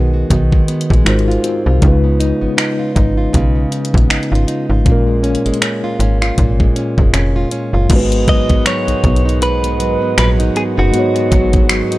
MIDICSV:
0, 0, Header, 1, 7, 480
1, 0, Start_track
1, 0, Tempo, 759494
1, 1153, Time_signature, 4, 2, 24, 8
1, 7573, End_track
2, 0, Start_track
2, 0, Title_t, "Clean electric guitar"
2, 0, Program_c, 0, 27
2, 5240, Note_on_c, 0, 75, 96
2, 5460, Note_off_c, 0, 75, 0
2, 5481, Note_on_c, 0, 73, 95
2, 5931, Note_off_c, 0, 73, 0
2, 5958, Note_on_c, 0, 71, 95
2, 6433, Note_off_c, 0, 71, 0
2, 6440, Note_on_c, 0, 71, 93
2, 6504, Note_off_c, 0, 71, 0
2, 6679, Note_on_c, 0, 68, 84
2, 6716, Note_off_c, 0, 68, 0
2, 6819, Note_on_c, 0, 66, 75
2, 7573, Note_off_c, 0, 66, 0
2, 7573, End_track
3, 0, Start_track
3, 0, Title_t, "Tine electric piano"
3, 0, Program_c, 1, 4
3, 0, Control_c, 1, 64, 127
3, 0, Note_on_c, 1, 51, 72
3, 0, Note_on_c, 1, 63, 68
3, 0, Note_on_c, 1, 66, 67
3, 0, Note_on_c, 1, 70, 69
3, 0, Note_on_c, 1, 71, 81
3, 634, Note_off_c, 1, 51, 0
3, 642, Note_off_c, 1, 63, 0
3, 650, Note_off_c, 1, 66, 0
3, 658, Note_off_c, 1, 70, 0
3, 659, Note_on_c, 1, 56, 72
3, 665, Note_off_c, 1, 71, 0
3, 665, Note_on_c, 1, 63, 64
3, 672, Note_on_c, 1, 65, 67
3, 677, Note_on_c, 1, 66, 60
3, 680, Control_c, 1, 64, 0
3, 684, Note_on_c, 1, 70, 61
3, 691, Note_on_c, 1, 72, 77
3, 792, Control_c, 1, 64, 127
3, 1125, Note_on_c, 1, 49, 69
3, 1133, Note_off_c, 1, 56, 0
3, 1141, Note_on_c, 1, 56, 67
3, 1149, Note_off_c, 1, 63, 0
3, 1152, Note_off_c, 1, 65, 0
3, 1155, Note_off_c, 1, 66, 0
3, 1155, Note_on_c, 1, 63, 64
3, 1159, Note_off_c, 1, 70, 0
3, 1161, Control_c, 1, 64, 0
3, 1162, Note_off_c, 1, 72, 0
3, 1170, Note_on_c, 1, 65, 66
3, 1187, Note_on_c, 1, 71, 81
3, 1251, Control_c, 1, 64, 127
3, 3033, Note_off_c, 1, 49, 0
3, 3042, Note_off_c, 1, 56, 0
3, 3046, Note_on_c, 1, 46, 73
3, 3049, Note_off_c, 1, 63, 0
3, 3056, Note_off_c, 1, 65, 0
3, 3061, Note_on_c, 1, 56, 66
3, 3065, Note_off_c, 1, 71, 0
3, 3076, Note_on_c, 1, 61, 63
3, 3082, Control_c, 1, 64, 0
3, 3092, Note_on_c, 1, 65, 63
3, 3108, Note_on_c, 1, 70, 82
3, 3171, Control_c, 1, 64, 127
3, 4954, Note_off_c, 1, 46, 0
3, 4962, Note_off_c, 1, 56, 0
3, 4965, Note_on_c, 1, 44, 76
3, 4969, Note_off_c, 1, 61, 0
3, 4977, Note_off_c, 1, 65, 0
3, 4982, Note_on_c, 1, 56, 67
3, 4985, Note_off_c, 1, 70, 0
3, 4998, Note_on_c, 1, 59, 65
3, 5002, Control_c, 1, 64, 0
3, 5013, Note_on_c, 1, 66, 69
3, 5028, Note_on_c, 1, 71, 86
3, 5116, Control_c, 1, 64, 127
3, 6874, Note_off_c, 1, 44, 0
3, 6882, Note_off_c, 1, 56, 0
3, 6883, Note_on_c, 1, 44, 64
3, 6890, Note_off_c, 1, 59, 0
3, 6897, Note_off_c, 1, 66, 0
3, 6898, Note_on_c, 1, 56, 57
3, 6905, Note_off_c, 1, 71, 0
3, 6913, Note_on_c, 1, 59, 59
3, 6929, Note_on_c, 1, 66, 57
3, 6946, Note_on_c, 1, 73, 69
3, 7573, Note_off_c, 1, 44, 0
3, 7573, Note_off_c, 1, 56, 0
3, 7573, Note_off_c, 1, 59, 0
3, 7573, Note_off_c, 1, 66, 0
3, 7573, Note_off_c, 1, 73, 0
3, 7573, End_track
4, 0, Start_track
4, 0, Title_t, "Nylon-string guitar"
4, 0, Program_c, 2, 24
4, 0, Note_on_c, 2, 51, 74
4, 0, Note_on_c, 2, 56, 57
4, 0, Note_on_c, 2, 59, 58
4, 0, Note_on_c, 2, 66, 63
4, 79, Note_off_c, 2, 66, 0
4, 87, Note_on_c, 2, 66, 60
4, 187, Note_off_c, 2, 51, 0
4, 189, Note_on_c, 2, 51, 77
4, 326, Note_off_c, 2, 56, 0
4, 328, Note_on_c, 2, 56, 58
4, 423, Note_off_c, 2, 59, 0
4, 430, Note_on_c, 2, 59, 61
4, 565, Note_off_c, 2, 56, 0
4, 568, Note_on_c, 2, 56, 55
4, 668, Note_on_c, 2, 44, 84
4, 726, Note_off_c, 2, 66, 0
4, 727, Note_off_c, 2, 59, 0
4, 808, Note_on_c, 2, 65, 62
4, 827, Note_off_c, 2, 51, 0
4, 908, Note_on_c, 2, 60, 60
4, 1047, Note_off_c, 2, 65, 0
4, 1050, Note_on_c, 2, 65, 61
4, 1150, Note_on_c, 2, 49, 82
4, 1206, Note_off_c, 2, 44, 0
4, 1206, Note_off_c, 2, 60, 0
4, 1287, Note_on_c, 2, 59, 53
4, 1306, Note_off_c, 2, 65, 0
4, 1388, Note_on_c, 2, 63, 59
4, 1518, Note_off_c, 2, 59, 0
4, 1526, Note_on_c, 2, 59, 57
4, 1619, Note_off_c, 2, 63, 0
4, 1626, Note_on_c, 2, 63, 59
4, 1764, Note_on_c, 2, 65, 63
4, 1860, Note_off_c, 2, 63, 0
4, 1867, Note_on_c, 2, 63, 59
4, 2004, Note_off_c, 2, 65, 0
4, 2006, Note_on_c, 2, 65, 58
4, 2097, Note_off_c, 2, 49, 0
4, 2105, Note_on_c, 2, 49, 80
4, 2238, Note_off_c, 2, 59, 0
4, 2245, Note_on_c, 2, 59, 60
4, 2340, Note_off_c, 2, 63, 0
4, 2347, Note_on_c, 2, 63, 62
4, 2478, Note_off_c, 2, 59, 0
4, 2486, Note_on_c, 2, 59, 58
4, 2581, Note_off_c, 2, 63, 0
4, 2589, Note_on_c, 2, 63, 61
4, 2726, Note_off_c, 2, 65, 0
4, 2728, Note_on_c, 2, 65, 62
4, 2780, Note_off_c, 2, 56, 0
4, 2820, Note_off_c, 2, 63, 0
4, 2828, Note_on_c, 2, 63, 62
4, 2964, Note_off_c, 2, 65, 0
4, 2967, Note_on_c, 2, 65, 62
4, 3064, Note_off_c, 2, 49, 0
4, 3067, Note_on_c, 2, 46, 77
4, 3125, Note_off_c, 2, 59, 0
4, 3126, Note_off_c, 2, 63, 0
4, 3205, Note_on_c, 2, 56, 55
4, 3307, Note_on_c, 2, 61, 62
4, 3446, Note_off_c, 2, 56, 0
4, 3448, Note_on_c, 2, 56, 56
4, 3542, Note_off_c, 2, 61, 0
4, 3549, Note_on_c, 2, 61, 60
4, 3687, Note_off_c, 2, 65, 0
4, 3690, Note_on_c, 2, 65, 66
4, 3785, Note_off_c, 2, 61, 0
4, 3793, Note_on_c, 2, 61, 56
4, 3921, Note_off_c, 2, 65, 0
4, 3928, Note_on_c, 2, 65, 61
4, 4025, Note_off_c, 2, 46, 0
4, 4033, Note_on_c, 2, 46, 81
4, 4170, Note_off_c, 2, 56, 0
4, 4172, Note_on_c, 2, 56, 57
4, 4263, Note_off_c, 2, 61, 0
4, 4270, Note_on_c, 2, 61, 62
4, 4409, Note_off_c, 2, 56, 0
4, 4411, Note_on_c, 2, 56, 52
4, 4505, Note_off_c, 2, 61, 0
4, 4512, Note_on_c, 2, 61, 61
4, 4643, Note_off_c, 2, 65, 0
4, 4651, Note_on_c, 2, 65, 64
4, 4745, Note_off_c, 2, 61, 0
4, 4752, Note_on_c, 2, 61, 60
4, 4884, Note_off_c, 2, 65, 0
4, 4892, Note_on_c, 2, 65, 62
4, 4989, Note_on_c, 2, 44, 77
4, 5048, Note_off_c, 2, 46, 0
4, 5048, Note_off_c, 2, 61, 0
4, 5048, Note_off_c, 2, 65, 0
4, 5126, Note_off_c, 2, 56, 0
4, 5128, Note_on_c, 2, 59, 55
4, 5229, Note_on_c, 2, 54, 62
4, 5359, Note_off_c, 2, 59, 0
4, 5367, Note_on_c, 2, 59, 56
4, 5466, Note_off_c, 2, 54, 0
4, 5468, Note_on_c, 2, 54, 63
4, 5609, Note_on_c, 2, 63, 61
4, 5701, Note_off_c, 2, 59, 0
4, 5709, Note_on_c, 2, 59, 58
4, 5840, Note_off_c, 2, 63, 0
4, 5848, Note_on_c, 2, 63, 59
4, 5941, Note_off_c, 2, 44, 0
4, 5948, Note_on_c, 2, 44, 82
4, 6081, Note_off_c, 2, 59, 0
4, 6089, Note_on_c, 2, 59, 61
4, 6188, Note_off_c, 2, 54, 0
4, 6191, Note_on_c, 2, 54, 62
4, 6323, Note_off_c, 2, 59, 0
4, 6330, Note_on_c, 2, 59, 57
4, 6430, Note_off_c, 2, 54, 0
4, 6432, Note_on_c, 2, 54, 70
4, 6560, Note_off_c, 2, 63, 0
4, 6568, Note_on_c, 2, 63, 66
4, 6662, Note_off_c, 2, 59, 0
4, 6670, Note_on_c, 2, 59, 61
4, 6801, Note_off_c, 2, 63, 0
4, 6808, Note_on_c, 2, 63, 65
4, 6902, Note_off_c, 2, 44, 0
4, 6909, Note_on_c, 2, 44, 82
4, 7040, Note_off_c, 2, 59, 0
4, 7048, Note_on_c, 2, 59, 53
4, 7144, Note_off_c, 2, 54, 0
4, 7147, Note_on_c, 2, 54, 60
4, 7279, Note_off_c, 2, 59, 0
4, 7287, Note_on_c, 2, 59, 58
4, 7386, Note_off_c, 2, 54, 0
4, 7389, Note_on_c, 2, 54, 69
4, 7520, Note_off_c, 2, 63, 0
4, 7528, Note_on_c, 2, 63, 69
4, 7573, Note_off_c, 2, 44, 0
4, 7573, Note_off_c, 2, 54, 0
4, 7573, Note_off_c, 2, 59, 0
4, 7573, Note_off_c, 2, 63, 0
4, 7573, End_track
5, 0, Start_track
5, 0, Title_t, "Harmonium"
5, 0, Program_c, 3, 20
5, 4991, Note_on_c, 3, 51, 77
5, 4992, Note_on_c, 3, 56, 72
5, 4992, Note_on_c, 3, 59, 71
5, 4992, Note_on_c, 3, 66, 85
5, 7573, Note_off_c, 3, 51, 0
5, 7573, Note_off_c, 3, 56, 0
5, 7573, Note_off_c, 3, 59, 0
5, 7573, Note_off_c, 3, 66, 0
5, 7573, End_track
6, 0, Start_track
6, 0, Title_t, "FM bass"
6, 0, Program_c, 4, 39
6, 0, Note_on_c, 4, 35, 82
6, 155, Note_off_c, 4, 35, 0
6, 193, Note_on_c, 4, 35, 96
6, 395, Note_off_c, 4, 35, 0
6, 572, Note_on_c, 4, 34, 87
6, 657, Note_off_c, 4, 34, 0
6, 671, Note_on_c, 4, 32, 100
6, 874, Note_off_c, 4, 32, 0
6, 1051, Note_on_c, 4, 36, 90
6, 1136, Note_off_c, 4, 36, 0
6, 1153, Note_on_c, 4, 37, 110
6, 1472, Note_off_c, 4, 37, 0
6, 1530, Note_on_c, 4, 32, 51
6, 1571, Note_off_c, 4, 32, 0
6, 1872, Note_on_c, 4, 32, 95
6, 2075, Note_off_c, 4, 32, 0
6, 2112, Note_on_c, 4, 35, 85
6, 2314, Note_off_c, 4, 35, 0
6, 2491, Note_on_c, 4, 34, 97
6, 2576, Note_off_c, 4, 34, 0
6, 2591, Note_on_c, 4, 32, 45
6, 2647, Note_off_c, 4, 32, 0
6, 2729, Note_on_c, 4, 32, 88
6, 2815, Note_off_c, 4, 32, 0
6, 2968, Note_on_c, 4, 32, 89
6, 3072, Note_on_c, 4, 34, 111
6, 3081, Note_off_c, 4, 32, 0
6, 3392, Note_off_c, 4, 34, 0
6, 3449, Note_on_c, 4, 32, 50
6, 3490, Note_off_c, 4, 32, 0
6, 3789, Note_on_c, 4, 32, 85
6, 3992, Note_off_c, 4, 32, 0
6, 4033, Note_on_c, 4, 32, 92
6, 4235, Note_off_c, 4, 32, 0
6, 4411, Note_on_c, 4, 30, 94
6, 4496, Note_off_c, 4, 30, 0
6, 4509, Note_on_c, 4, 29, 100
6, 4713, Note_off_c, 4, 29, 0
6, 4887, Note_on_c, 4, 30, 90
6, 4974, Note_off_c, 4, 30, 0
6, 4992, Note_on_c, 4, 32, 110
6, 5312, Note_off_c, 4, 32, 0
6, 5371, Note_on_c, 4, 35, 47
6, 5411, Note_off_c, 4, 35, 0
6, 5612, Note_on_c, 4, 35, 48
6, 5652, Note_off_c, 4, 35, 0
6, 5712, Note_on_c, 4, 35, 96
6, 6306, Note_off_c, 4, 35, 0
6, 6432, Note_on_c, 4, 34, 97
6, 6635, Note_off_c, 4, 34, 0
6, 6814, Note_on_c, 4, 30, 90
6, 6898, Note_off_c, 4, 30, 0
6, 7153, Note_on_c, 4, 32, 96
6, 7472, Note_off_c, 4, 32, 0
6, 7573, End_track
7, 0, Start_track
7, 0, Title_t, "Drums"
7, 192, Note_on_c, 9, 36, 81
7, 193, Note_on_c, 9, 42, 76
7, 256, Note_off_c, 9, 36, 0
7, 256, Note_off_c, 9, 42, 0
7, 331, Note_on_c, 9, 36, 79
7, 394, Note_off_c, 9, 36, 0
7, 431, Note_on_c, 9, 42, 62
7, 495, Note_off_c, 9, 42, 0
7, 511, Note_on_c, 9, 42, 56
7, 571, Note_on_c, 9, 36, 89
7, 574, Note_off_c, 9, 42, 0
7, 591, Note_on_c, 9, 42, 49
7, 634, Note_off_c, 9, 36, 0
7, 654, Note_off_c, 9, 42, 0
7, 671, Note_on_c, 9, 42, 46
7, 672, Note_on_c, 9, 26, 105
7, 735, Note_off_c, 9, 26, 0
7, 735, Note_off_c, 9, 42, 0
7, 751, Note_on_c, 9, 42, 43
7, 814, Note_off_c, 9, 42, 0
7, 831, Note_on_c, 9, 42, 35
7, 894, Note_off_c, 9, 42, 0
7, 909, Note_on_c, 9, 42, 64
7, 973, Note_off_c, 9, 42, 0
7, 1150, Note_on_c, 9, 42, 64
7, 1152, Note_on_c, 9, 36, 114
7, 1214, Note_off_c, 9, 42, 0
7, 1215, Note_off_c, 9, 36, 0
7, 1393, Note_on_c, 9, 42, 56
7, 1456, Note_off_c, 9, 42, 0
7, 1631, Note_on_c, 9, 26, 110
7, 1632, Note_on_c, 9, 42, 60
7, 1694, Note_off_c, 9, 26, 0
7, 1695, Note_off_c, 9, 42, 0
7, 1871, Note_on_c, 9, 42, 54
7, 1872, Note_on_c, 9, 36, 92
7, 1935, Note_off_c, 9, 42, 0
7, 1936, Note_off_c, 9, 36, 0
7, 2112, Note_on_c, 9, 36, 81
7, 2112, Note_on_c, 9, 42, 74
7, 2175, Note_off_c, 9, 36, 0
7, 2175, Note_off_c, 9, 42, 0
7, 2352, Note_on_c, 9, 42, 62
7, 2415, Note_off_c, 9, 42, 0
7, 2432, Note_on_c, 9, 42, 58
7, 2491, Note_on_c, 9, 36, 88
7, 2495, Note_off_c, 9, 42, 0
7, 2513, Note_on_c, 9, 42, 48
7, 2554, Note_off_c, 9, 36, 0
7, 2576, Note_off_c, 9, 42, 0
7, 2593, Note_on_c, 9, 26, 106
7, 2593, Note_on_c, 9, 42, 45
7, 2656, Note_off_c, 9, 26, 0
7, 2656, Note_off_c, 9, 42, 0
7, 2672, Note_on_c, 9, 42, 40
7, 2735, Note_off_c, 9, 42, 0
7, 2751, Note_on_c, 9, 42, 34
7, 2814, Note_off_c, 9, 42, 0
7, 2832, Note_on_c, 9, 42, 67
7, 2895, Note_off_c, 9, 42, 0
7, 3070, Note_on_c, 9, 42, 67
7, 3071, Note_on_c, 9, 36, 111
7, 3134, Note_off_c, 9, 36, 0
7, 3134, Note_off_c, 9, 42, 0
7, 3311, Note_on_c, 9, 42, 45
7, 3374, Note_off_c, 9, 42, 0
7, 3380, Note_on_c, 9, 42, 45
7, 3443, Note_off_c, 9, 42, 0
7, 3450, Note_on_c, 9, 42, 48
7, 3499, Note_off_c, 9, 42, 0
7, 3499, Note_on_c, 9, 42, 47
7, 3551, Note_on_c, 9, 26, 109
7, 3552, Note_off_c, 9, 42, 0
7, 3552, Note_on_c, 9, 42, 64
7, 3614, Note_off_c, 9, 26, 0
7, 3615, Note_off_c, 9, 42, 0
7, 3793, Note_on_c, 9, 42, 55
7, 3856, Note_off_c, 9, 42, 0
7, 3931, Note_on_c, 9, 26, 64
7, 3995, Note_off_c, 9, 26, 0
7, 4031, Note_on_c, 9, 42, 71
7, 4032, Note_on_c, 9, 36, 81
7, 4094, Note_off_c, 9, 42, 0
7, 4095, Note_off_c, 9, 36, 0
7, 4171, Note_on_c, 9, 36, 82
7, 4234, Note_off_c, 9, 36, 0
7, 4274, Note_on_c, 9, 42, 60
7, 4337, Note_off_c, 9, 42, 0
7, 4410, Note_on_c, 9, 36, 87
7, 4474, Note_off_c, 9, 36, 0
7, 4510, Note_on_c, 9, 26, 103
7, 4511, Note_on_c, 9, 42, 69
7, 4574, Note_off_c, 9, 26, 0
7, 4574, Note_off_c, 9, 42, 0
7, 4749, Note_on_c, 9, 42, 69
7, 4812, Note_off_c, 9, 42, 0
7, 4991, Note_on_c, 9, 42, 64
7, 4991, Note_on_c, 9, 49, 89
7, 4992, Note_on_c, 9, 36, 109
7, 5054, Note_off_c, 9, 42, 0
7, 5054, Note_off_c, 9, 49, 0
7, 5055, Note_off_c, 9, 36, 0
7, 5131, Note_on_c, 9, 42, 47
7, 5195, Note_off_c, 9, 42, 0
7, 5232, Note_on_c, 9, 36, 83
7, 5232, Note_on_c, 9, 42, 59
7, 5295, Note_off_c, 9, 36, 0
7, 5295, Note_off_c, 9, 42, 0
7, 5369, Note_on_c, 9, 42, 48
7, 5371, Note_on_c, 9, 36, 84
7, 5432, Note_off_c, 9, 42, 0
7, 5434, Note_off_c, 9, 36, 0
7, 5472, Note_on_c, 9, 26, 110
7, 5472, Note_on_c, 9, 42, 64
7, 5535, Note_off_c, 9, 26, 0
7, 5535, Note_off_c, 9, 42, 0
7, 5613, Note_on_c, 9, 42, 55
7, 5677, Note_off_c, 9, 42, 0
7, 5711, Note_on_c, 9, 42, 47
7, 5713, Note_on_c, 9, 36, 94
7, 5775, Note_off_c, 9, 42, 0
7, 5776, Note_off_c, 9, 36, 0
7, 5792, Note_on_c, 9, 42, 47
7, 5855, Note_off_c, 9, 42, 0
7, 5871, Note_on_c, 9, 42, 48
7, 5934, Note_off_c, 9, 42, 0
7, 5953, Note_on_c, 9, 42, 77
7, 6016, Note_off_c, 9, 42, 0
7, 6092, Note_on_c, 9, 42, 49
7, 6155, Note_off_c, 9, 42, 0
7, 6194, Note_on_c, 9, 42, 68
7, 6257, Note_off_c, 9, 42, 0
7, 6432, Note_on_c, 9, 26, 109
7, 6433, Note_on_c, 9, 42, 69
7, 6495, Note_off_c, 9, 26, 0
7, 6496, Note_off_c, 9, 42, 0
7, 6572, Note_on_c, 9, 42, 51
7, 6635, Note_off_c, 9, 42, 0
7, 6674, Note_on_c, 9, 42, 63
7, 6737, Note_off_c, 9, 42, 0
7, 6911, Note_on_c, 9, 42, 63
7, 6975, Note_off_c, 9, 42, 0
7, 7052, Note_on_c, 9, 42, 49
7, 7115, Note_off_c, 9, 42, 0
7, 7152, Note_on_c, 9, 36, 82
7, 7153, Note_on_c, 9, 42, 62
7, 7215, Note_off_c, 9, 36, 0
7, 7216, Note_off_c, 9, 42, 0
7, 7288, Note_on_c, 9, 42, 50
7, 7291, Note_on_c, 9, 36, 84
7, 7351, Note_off_c, 9, 42, 0
7, 7354, Note_off_c, 9, 36, 0
7, 7391, Note_on_c, 9, 26, 116
7, 7391, Note_on_c, 9, 42, 64
7, 7454, Note_off_c, 9, 26, 0
7, 7455, Note_off_c, 9, 42, 0
7, 7533, Note_on_c, 9, 42, 59
7, 7573, Note_off_c, 9, 42, 0
7, 7573, End_track
0, 0, End_of_file